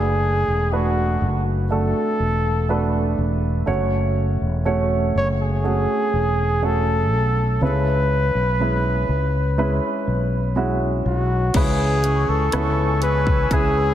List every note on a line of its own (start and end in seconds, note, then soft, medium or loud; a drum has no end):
0.00 0.44 F#1 medium
0.00 0.68 A3 medium
0.00 0.68 D4 soft
0.00 0.68 F#4 soft
0.00 0.74 G#4 medium
0.00 0.68 B4 medium
0.48 1.18 E1 medium
0.72 1.66 A3 medium
0.72 1.67 D4 soft
0.72 1.44 F#4 medium
0.72 1.66 F#4 soft
0.72 1.67 B4 medium
1.21 1.92 F#1 medium
1.71 2.64 A3 medium
1.71 2.64 D4 soft
1.71 2.65 F#4 soft
1.71 3.15 A4 medium
1.71 2.65 A4 medium
2.20 3.14 E1 soft
2.69 3.63 A3 medium
2.69 3.63 D4 medium
2.69 3.63 F#4 soft
2.69 3.63 B4 medium
3.18 3.64 E1 medium
3.66 4.38 F#1 medium
3.66 4.61 A3 medium
3.66 4.61 C#4 medium
3.66 4.61 F#4 medium
3.66 4.61 C#5 medium
4.41 5.11 E1 medium
4.65 5.59 A3 medium
4.65 5.60 C#4 medium
4.65 5.60 F#4 medium
4.65 5.60 C#5 medium
5.15 5.85 F#1 medium
5.15 5.28 C#5 medium
5.42 6.67 G#4 medium
5.64 6.58 A3 medium
5.64 6.58 C#4 medium
5.64 6.58 F#4 soft
5.64 6.58 G#4 medium
6.13 7.12 E1 medium
6.62 7.56 A3 medium
6.62 7.56 C#4 soft
6.62 7.57 F#4 soft
6.62 7.63 A4 medium
6.62 7.57 C#5 medium
7.12 7.58 B1 medium
7.61 8.31 C#2 medium
7.61 9.05 C#3 soft
7.61 8.55 G#3 soft
7.61 8.55 C#4 soft
7.61 8.55 E4 soft
7.61 8.56 B4 soft
7.61 10.54 B4 medium
8.35 9.05 B1 medium
8.60 9.53 G#3 soft
8.60 9.53 C#4 soft
8.60 9.54 E4 soft
8.60 9.54 B4 medium
9.09 9.79 C#2 medium
9.58 10.52 G#3 medium
9.58 10.52 C#4 medium
9.58 10.52 E4 medium
9.58 10.52 B4 medium
10.07 11.02 B1 medium
10.56 11.50 G#3 medium
10.56 11.50 C#4 medium
10.56 11.50 E4 medium
10.56 11.50 F#4 medium
11.05 11.51 B1 medium
11.05 11.57 F#4 medium
11.54 12.25 C#2 medium
11.54 12.04 C#3 medium
11.54 12.99 C#3 soft
11.54 12.04 E3 medium
11.54 12.48 G#3 medium
11.54 12.03 B3 medium
11.54 12.49 C#4 soft
11.54 12.03 C#4 medium
11.54 12.49 E4 soft
11.54 12.31 G#4 medium
11.54 12.05 G#4 medium
11.54 13.94 B4 medium
11.54 12.49 B4 medium
11.54 13.94 G#5 medium
11.54 13.50 C#6 medium
11.54 13.94 E6 medium
11.54 kick medium
11.54 closed hi-hat medium
11.54 crash medium
12.04 13.03 C#3 soft
12.04 13.50 E3 soft
12.04 13.04 B3 soft
12.04 13.02 C#4 soft
12.04 closed hi-hat medium
12.28 12.51 C#2 medium
12.28 13.03 A4 medium
12.52 13.48 C#2 medium
12.52 13.47 B3 medium
12.52 13.47 C#4 soft
12.52 13.47 E4 soft
12.52 13.47 B4 medium
12.52 cross-stick medium
12.52 closed hi-hat medium
13.02 13.50 B3 soft
13.02 13.51 C#4 soft
13.02 13.51 G#4 soft
13.02 13.54 B4 medium
13.02 closed hi-hat medium
13.27 kick medium
13.27 cross-stick soft
13.50 13.94 C#2 medium
13.50 13.94 E3 medium
13.50 13.94 G#3 medium
13.50 13.94 B3 medium
13.50 13.94 C#4 medium
13.50 13.94 C#4 soft
13.50 13.94 E4 soft
13.50 13.94 G#4 loud
13.50 13.94 G#4 medium
13.50 13.94 B4 medium
13.50 13.94 B5 medium
13.50 kick medium
13.50 closed hi-hat medium